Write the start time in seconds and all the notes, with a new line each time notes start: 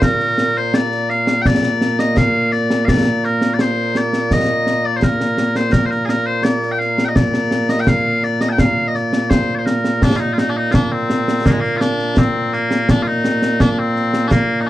Already playing: A#2 A#3
0.02 A#4, concert bass drum, snare
0.20 snare
0.38 snare
0.57 C5
0.74 D5, snare
0.92 snare
1.10 F5, snare
1.27 snare
1.42 G5, concert bass drum, snare
1.46 D5
1.63 snare
1.81 snare
1.99 D#5, snare
2.17 F5, concert bass drum, snare
2.52 D5, snare
2.70 snare
2.85 D5 F5, concert bass drum, snare
3.24 A#4, snare
3.41 snare
3.54 D5
3.59 C5, snare
3.95 D5, snare
4.13 snare
4.31 D#5, concert bass drum, snare
4.67 snare
4.85 D5
4.96 C5
5.02 A#4, concert bass drum, snare
5.20 snare
5.38 snare
5.55 C5, snare
5.72 A#4, concert bass drum, snare
5.86 C5
5.91 A#4, snare
6.05 G#4 A#4, snare
6.26 C5
6.43 D5, snare
6.63 snare
6.72 G5
6.79 F5, snare
6.98 snare
7.05 D#5 G5
7.15 D5, concert bass drum, snare
7.34 snare
7.51 snare
7.69 D#5, snare
7.80 G5
7.87 F5, concert bass drum, snare
8.23 D5, snare
8.41 D#5, snare
8.49 G5 A5
8.58 F5, concert bass drum, snare
8.88 D#5
8.95 D5, snare
9.13 snare
9.30 C5, concert bass drum, snare
9.55 C5 D5
9.66 A#4, snare
9.85 snare
10.02 D4, concert bass drum, snare
10.16 D#4 F4
10.33 F4
10.38 D#4, snare
10.50 D4
10.57 D#4
10.71 D4 F4, concert bass drum, snare
10.83 D4
10.91 C4
11.10 snare
11.28 snare
11.46 A#3, concert bass drum, snare
11.51 G#3
11.60 A#3, snare
11.77 F4
11.81 D4, snare
11.99 snare
12.17 C4, concert bass drum, snare
12.53 A#3, snare
12.71 snare
12.89 D4, concert bass drum, snare
13.03 F4
13.07 D#4
13.25 snare
13.42 snare
13.60 D4, concert bass drum, snare
13.70 D4
13.78 C4
13.96 snare
14.13 snare
14.28 A#3 D4, concert bass drum, snare
14.61 D#4